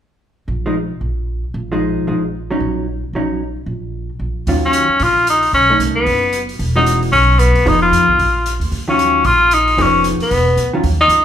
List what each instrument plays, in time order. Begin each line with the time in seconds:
0.48 upright bass A#1
0.66 hollow-body jazz guitar F3 G#3 D#4
1.01 upright bass A#1
1.54 upright bass A#1
1.72 hollow-body jazz guitar F3 G#3 D#4
2.07 upright bass A#1, hollow-body jazz guitar F3 G#3 D#4
2.51 hollow-body jazz guitar F#3 C#4 D#4
2.60 upright bass A#1
3.13 upright bass A#1, hollow-body jazz guitar F#3 C#4 D#4
3.66 upright bass A#1
4.19 upright bass A#1
4.47 upright bass D#2, hollow-body jazz guitar D#3 F#3 C#4 F4, kick, open hi-hat
4.65 tenor saxophone C#4
4.73 closed hi-hat
4.88 muted upright bass stroke
5.00 upright bass A#1, tenor saxophone F4, kick, open hi-hat
5.27 tenor saxophone D#4, closed hi-hat
5.43 open hi-hat
5.53 upright bass B1, tenor saxophone C#4, kick, open hi-hat
5.70 hollow-body jazz guitar A3 C#4 D#4
5.79 upright bass C2, closed hi-hat
5.95 tenor saxophone B3
6.06 upright bass F#1, kick, open hi-hat
6.33 closed hi-hat
6.49 open hi-hat
6.59 upright bass E1, kick, open hi-hat
6.76 hollow-body jazz guitar E3 G#3 C#4 F#4, tenor saxophone D#4
6.86 closed hi-hat
7.03 open hi-hat
7.12 upright bass B1, tenor saxophone C#4, kick, open hi-hat
7.39 tenor saxophone B3, closed hi-hat
7.54 upright bass E1, open hi-hat
7.66 upright bass F1, hollow-body jazz guitar F3 B3 D#4 G#4, tenor saxophone D#4, kick, open hi-hat
7.82 tenor saxophone F4
7.91 upright bass F2, closed hi-hat
8.08 kick
8.18 upright bass A#1, kick, open hi-hat
8.46 closed hi-hat
8.60 upright bass D2, open hi-hat
8.71 upright bass D#2, kick, open hi-hat
8.88 hollow-body jazz guitar D#3 F#3 C#4 F4, tenor saxophone C#4
8.99 closed hi-hat
9.24 upright bass A#1, tenor saxophone F4, kick, open hi-hat
9.51 tenor saxophone D#4, closed hi-hat
9.68 open hi-hat
9.77 upright bass F1, hollow-body jazz guitar F3 B3 D#4 G#4, kick, open hi-hat
9.82 tenor saxophone C#4
10.04 closed hi-hat
10.19 tenor saxophone B3, muted upright bass stroke, open hi-hat
10.31 upright bass E1, kick, open hi-hat
10.57 upright bass D2, closed hi-hat
10.73 hollow-body jazz guitar D#3 F#3 C#4 F4
10.83 upright bass D#2, kick, open hi-hat
11.01 tenor saxophone D#4
11.08 upright bass C#2, closed hi-hat